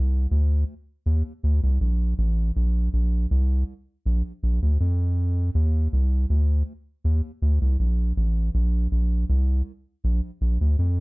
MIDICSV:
0, 0, Header, 1, 2, 480
1, 0, Start_track
1, 0, Tempo, 748130
1, 1631, Time_signature, 4, 2, 24, 8
1, 7058, End_track
2, 0, Start_track
2, 0, Title_t, "Sub bass"
2, 0, Program_c, 0, 38
2, 0, Note_on_c, 0, 36, 93
2, 173, Note_off_c, 0, 36, 0
2, 199, Note_on_c, 0, 38, 94
2, 413, Note_off_c, 0, 38, 0
2, 679, Note_on_c, 0, 39, 95
2, 789, Note_off_c, 0, 39, 0
2, 920, Note_on_c, 0, 38, 93
2, 1029, Note_off_c, 0, 38, 0
2, 1046, Note_on_c, 0, 36, 93
2, 1146, Note_off_c, 0, 36, 0
2, 1158, Note_on_c, 0, 34, 91
2, 1373, Note_off_c, 0, 34, 0
2, 1399, Note_on_c, 0, 33, 119
2, 1613, Note_off_c, 0, 33, 0
2, 1642, Note_on_c, 0, 34, 108
2, 1854, Note_off_c, 0, 34, 0
2, 1881, Note_on_c, 0, 34, 95
2, 2094, Note_off_c, 0, 34, 0
2, 2122, Note_on_c, 0, 36, 107
2, 2334, Note_off_c, 0, 36, 0
2, 2602, Note_on_c, 0, 34, 100
2, 2710, Note_off_c, 0, 34, 0
2, 2841, Note_on_c, 0, 34, 84
2, 2950, Note_off_c, 0, 34, 0
2, 2966, Note_on_c, 0, 38, 80
2, 3066, Note_off_c, 0, 38, 0
2, 3081, Note_on_c, 0, 41, 87
2, 3530, Note_off_c, 0, 41, 0
2, 3559, Note_on_c, 0, 39, 114
2, 3773, Note_off_c, 0, 39, 0
2, 3802, Note_on_c, 0, 36, 99
2, 4015, Note_off_c, 0, 36, 0
2, 4040, Note_on_c, 0, 38, 95
2, 4254, Note_off_c, 0, 38, 0
2, 4520, Note_on_c, 0, 39, 99
2, 4629, Note_off_c, 0, 39, 0
2, 4760, Note_on_c, 0, 38, 97
2, 4869, Note_off_c, 0, 38, 0
2, 4885, Note_on_c, 0, 36, 94
2, 4985, Note_off_c, 0, 36, 0
2, 5000, Note_on_c, 0, 34, 93
2, 5213, Note_off_c, 0, 34, 0
2, 5239, Note_on_c, 0, 33, 101
2, 5453, Note_off_c, 0, 33, 0
2, 5479, Note_on_c, 0, 34, 118
2, 5693, Note_off_c, 0, 34, 0
2, 5719, Note_on_c, 0, 34, 91
2, 5933, Note_off_c, 0, 34, 0
2, 5960, Note_on_c, 0, 36, 103
2, 6174, Note_off_c, 0, 36, 0
2, 6441, Note_on_c, 0, 34, 103
2, 6550, Note_off_c, 0, 34, 0
2, 6680, Note_on_c, 0, 34, 91
2, 6789, Note_off_c, 0, 34, 0
2, 6806, Note_on_c, 0, 38, 88
2, 6906, Note_off_c, 0, 38, 0
2, 6920, Note_on_c, 0, 41, 92
2, 7058, Note_off_c, 0, 41, 0
2, 7058, End_track
0, 0, End_of_file